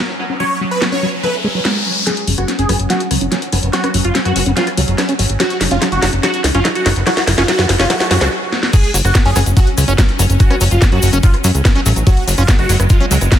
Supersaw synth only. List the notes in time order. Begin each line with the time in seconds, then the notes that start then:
0.40 C#5
0.71 B4
0.92 C#5
1.23 B4
2.07 G#4
2.38 F#4
2.59 G#4
2.90 F#4
3.73 F#4
4.05 F4
4.25 F#4
4.57 F4
5.40 F#4
5.71 F4
5.92 F#4
6.23 F#4
6.55 F4
6.75 F#4
7.07 F#4
7.38 F4
7.48 F#4
7.80 F4
7.90 F#4
8.11 F#4
8.73 G#4
9.05 F#4
9.25 G#4
9.57 F#4
10.40 F#4
10.71 F4
10.92 F#4
11.23 F4
12.07 F#4
12.38 F4
12.59 F#4
12.90 F4